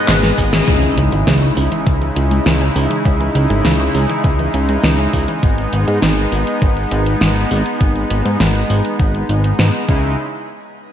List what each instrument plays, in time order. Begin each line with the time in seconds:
Already playing: analog polysynth G#2 B3 D#4 G#4 D#5, supersaw synth G#3 B3 D#5, lead electric guitar B4
0.08 analog synth bass G#1, synth arpeggio sound B2, snare, clap, closed hi-hat, cabasa
0.23 synth arpeggio sound G#3, snare, closed hi-hat, cabasa
0.38 analog synth bass G#1, synth arpeggio sound G#4, kick, open hi-hat, cabasa
0.53 analog polysynth C#3 C#4 E4 G#4 D#5, synth arpeggio sound G#4, snare, closed hi-hat, cabasa
0.68 analog synth bass C#2, supersaw synth C#3 G#3 D#4 E4, synth arpeggio sound C#3, kick, closed hi-hat, impact
0.83 synth arpeggio sound E3, closed hi-hat
0.97 analog synth bass C#2, synth arpeggio sound C#3, closed hi-hat
1.12 analog synth bass G#1, synth arpeggio sound G#3, closed hi-hat
1.27 analog synth bass C#2, synth arpeggio sound C#3, snare, closed hi-hat
1.42 synth arpeggio sound C#4, closed hi-hat
1.57 analog synth bass C#2, synth arpeggio sound C#3, open hi-hat
1.72 synth arpeggio sound E3, closed hi-hat
1.87 analog synth bass C#2, synth arpeggio sound C#3, kick, closed hi-hat
2.02 synth arpeggio sound E3, closed hi-hat
2.16 analog synth bass C#2, synth arpeggio sound C#3, closed hi-hat
2.31 synth arpeggio sound G#3, closed hi-hat
2.46 analog synth bass C#2, synth arpeggio sound C#3, snare, closed hi-hat
2.61 synth arpeggio sound C#4, closed hi-hat
2.76 analog synth bass C#2, synth arpeggio sound C#3, open hi-hat
2.90 synth arpeggio sound E3, closed hi-hat
3.05 analog synth bass C#2, synth arpeggio sound C#3, kick, closed hi-hat
3.20 synth arpeggio sound E3, closed hi-hat
3.35 analog synth bass C#2, synth arpeggio sound C#3, closed hi-hat
3.50 analog synth bass G#1, synth arpeggio sound G#3, closed hi-hat
3.65 analog synth bass C#2, synth arpeggio sound C#3, snare, closed hi-hat
3.80 synth arpeggio sound C#4, closed hi-hat
3.95 analog synth bass C#2, synth arpeggio sound C#3, open hi-hat
4.09 synth arpeggio sound E3, closed hi-hat
4.24 analog synth bass C#2, synth arpeggio sound C#3, kick, closed hi-hat
4.39 synth arpeggio sound E3, closed hi-hat
4.54 analog synth bass C#2, synth arpeggio sound C#3, closed hi-hat
4.69 synth arpeggio sound G#3, closed hi-hat
4.84 analog synth bass C#2, synth arpeggio sound C#3, snare, closed hi-hat
4.99 synth arpeggio sound C#4, closed hi-hat
5.13 analog synth bass C#2, synth arpeggio sound C#3, kick, open hi-hat
5.28 synth arpeggio sound E3, closed hi-hat
5.43 analog synth bass G#1, supersaw synth B3, kick, closed hi-hat
5.58 closed hi-hat
5.73 analog synth bass G#1, closed hi-hat
5.88 analog synth bass G#2, closed hi-hat
6.02 analog synth bass G#1, snare, closed hi-hat
6.17 closed hi-hat
6.32 analog synth bass G#1, open hi-hat
6.47 closed hi-hat
6.62 analog synth bass G#1, kick, closed hi-hat
6.77 closed hi-hat
6.91 analog synth bass G#1, closed hi-hat
7.06 closed hi-hat
7.21 analog synth bass G#1, snare, closed hi-hat
7.36 closed hi-hat
7.51 analog synth bass G#1, open hi-hat
7.66 closed hi-hat
7.81 analog synth bass G#1, kick, closed hi-hat
7.96 closed hi-hat
8.10 analog synth bass G#1, closed hi-hat
8.25 analog synth bass G#2, closed hi-hat
8.40 analog synth bass G#1, snare, closed hi-hat
8.55 closed hi-hat
8.70 analog synth bass G#1, open hi-hat
8.85 closed hi-hat
9.00 analog synth bass G#1, kick, closed hi-hat
9.14 closed hi-hat
9.29 analog synth bass G#1, closed hi-hat
9.44 closed hi-hat
9.59 analog synth bass G#2, snare, closed hi-hat
9.74 closed hi-hat
9.89 analog synth bass C#2, supersaw synth C#3 G#3 D#4 E4, kick